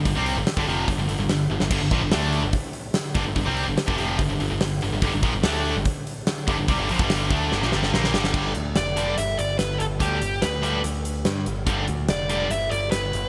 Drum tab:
CC |----------------|x---------------|----------------|----------------|
HH |o-o-o-o-o-o-o---|o-o-o-o-o-o-o-o-|o-o-o-o-o-o-o-o-|o-o-o-o-o-o-o-o-|
SD |----o-------o--o|----o-------o---|----o-------o---|----o-------o---|
T1 |--------------o-|----------------|----------------|----------------|
BD |o----o--o-------|o-o-----o-----o-|o----o--o-------|o-o-----o-----o-|

CC |----------------|x---------------|----------------|----------------|
HH |o-o-o-o---------|--x-x-x-x-x-x-x-|x-x-x-x-x-x-x-x-|x-x-x-x-x-x-x-x-|
SD |----o---oooooooo|----o-------o---|----o-------o---|----o-------o---|
T1 |----------------|----------------|----------------|----------------|
BD |o--o--o---------|o---------------|o---------------|o---------------|